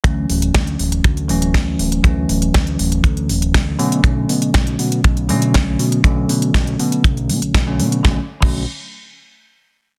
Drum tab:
CC |----------------|----------------|----------------|----------------|
HH |x-oxxxoxxxoxx-ox|x-oxxxoxxxoxx-ox|x-oxxxoxxxoxx-ox|x-oxxxoxxxoxx-ox|
SD |----o-------o---|----o-------o---|----o-------o---|----o-------o---|
BD |o---o---o---o---|o---o---o---o---|o---o---o---o---|o---o---o---o---|

CC |---x------------|
HH |----------------|
SD |o---------------|
BD |o--o------------|